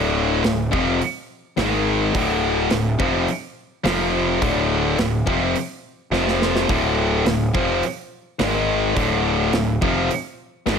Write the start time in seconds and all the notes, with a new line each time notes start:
Already playing: D1 D2 A2 D3
0.43 D1 D2 A2, snare, open hi-hat
0.71 F1 F2 C3 F3, kick
1.02 open hi-hat
1.57 G#1 G#2 D#3 G#3, snare, open hi-hat
2.14 D1 D2 A2 D3, kick, open hi-hat
2.70 D1 D2 A2, snare, open hi-hat
2.99 F1 F2 C3 F3, kick
3.28 open hi-hat
3.84 F1 F2 C3 F3, snare, open hi-hat
4.40 D1 D2 A2 D3, kick, open hi-hat
4.97 D1 D2 A2, snare, open hi-hat
5.26 F1 F2 C3 F3, kick
5.56 open hi-hat
6.11 F1 F2 C3 F3, snare
6.28 snare
6.42 snare
6.56 snare
6.68 D1 D2 A2 D3, kick, open hi-hat
7.25 D1 D2 A2, snare, open hi-hat
7.53 F1 F2 C3 F3, kick
7.83 open hi-hat
8.39 G#1 G#2 D#3 G#3, snare, open hi-hat
8.95 D1 D2 A2 D3, kick, open hi-hat
9.52 D1 D2 A2, snare, open hi-hat
9.81 F1 F2 C3 F3, kick
10.11 open hi-hat
10.66 G#1 G#2 D#3 G#3, snare, open hi-hat